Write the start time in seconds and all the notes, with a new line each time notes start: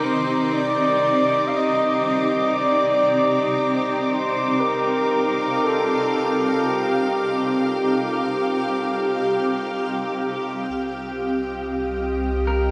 Already playing: C4 D#4 G4 D6
0.05 C5
0.54 D5
1.48 F5
1.55 D#5
2.05 D#5
2.57 D5
3.68 F5
4.11 C5
4.60 A#4
5.64 A4
6.66 G4
10.67 C2 D#5 D#6
11.24 D#5
11.36 C5
12.47 A#4